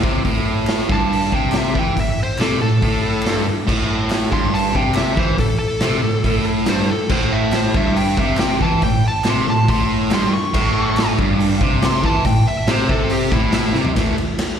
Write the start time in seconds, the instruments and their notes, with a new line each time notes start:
0.03 distorted electric guitar C3, kick
0.24 distorted electric guitar A2, kick, open hi-hat
0.67 snare, clap, open hi-hat
0.89 distorted electric guitar G2, lead electric guitar A5, kick
1.13 open hi-hat
1.31 distorted electric guitar C3, lead electric guitar G5, kick
1.52 snare, clap, open hi-hat
1.57 lead electric guitar E5
1.75 distorted electric guitar E3, lead electric guitar G5, kick
1.96 distorted electric guitar A2, kick, open hi-hat
2.00 lead electric guitar E5
2.23 lead electric guitar C5
2.38 distorted electric guitar C3, lead electric guitar A4, snare, clap, open hi-hat
2.62 distorted electric guitar A2, lead electric guitar A4
2.82 distorted electric guitar A2, kick, open hi-hat
3.22 distorted electric guitar G2, clap, open hi-hat
3.27 snare
3.46 muted distorted electric guitar stroke
3.67 distorted electric guitar A2, kick, crash
4.10 snare, clap, open hi-hat
4.31 distorted electric guitar G2, lead electric guitar C6, kick
4.54 lead electric guitar A5, open hi-hat
4.72 distorted electric guitar C3, lead electric guitar G5, kick
4.94 lead electric guitar E5, snare, clap, open hi-hat
5.16 distorted electric guitar E3, lead electric guitar C5, kick
5.38 distorted electric guitar A2, lead electric guitar A4, kick, open hi-hat
5.59 lead electric guitar A4
5.80 distorted electric guitar C3, snare, clap, open hi-hat
6.02 distorted electric guitar A2
6.24 distorted electric guitar A2, kick, open hi-hat
6.46 clap
6.66 distorted electric guitar G2, lead electric guitar C5, snare, clap, open hi-hat
6.89 lead electric guitar A4, muted distorted electric guitar stroke
7.09 distorted electric guitar A2, lead electric guitar C5, kick, crash
7.33 lead electric guitar E5
7.52 lead electric guitar C5, snare, clap, open hi-hat
7.74 distorted electric guitar G2, lead electric guitar E5, kick
7.96 lead electric guitar G5, open hi-hat
8.17 distorted electric guitar C3, lead electric guitar E5, kick
8.37 lead electric guitar G5, snare, clap, open hi-hat
8.61 distorted electric guitar E3, lead electric guitar A5, kick
8.82 distorted electric guitar A2, lead electric guitar G5, kick, open hi-hat
9.08 lead electric guitar A5
9.24 distorted electric guitar C3, snare, clap, open hi-hat
9.30 lead electric guitar C6
9.48 distorted electric guitar A2, lead electric guitar A5
9.68 distorted electric guitar A2, lead electric guitar C6, kick, open hi-hat
10.11 distorted electric guitar G2, lead electric guitar C6, snare, clap, open hi-hat
10.34 lead electric guitar C#6, muted distorted electric guitar stroke
10.54 distorted electric guitar A2, kick, crash
10.97 snare, clap, open hi-hat
11.19 distorted electric guitar G2, kick
11.40 open hi-hat
11.61 distorted electric guitar C3, kick
11.82 lead electric guitar C6, snare, clap, open hi-hat
12.04 distorted electric guitar E3, lead electric guitar A5, kick
12.24 distorted electric guitar A2, lead electric guitar G5, kick, open hi-hat
12.47 lead electric guitar E5
12.67 distorted electric guitar C3, lead electric guitar C5, snare, clap, open hi-hat
12.89 distorted electric guitar C3, lead electric guitar A4, kick
13.10 lead electric guitar G4, open hi-hat
13.32 distorted electric guitar A2, lead electric guitar E4, kick, clap
13.52 lead electric guitar E4, snare, clap, open hi-hat
13.74 distorted electric guitar C3, snare
13.85 floor tom
13.95 distorted electric guitar A2 E3 A3, kick, snare, ride
14.18 ride
14.39 snare, clap, ride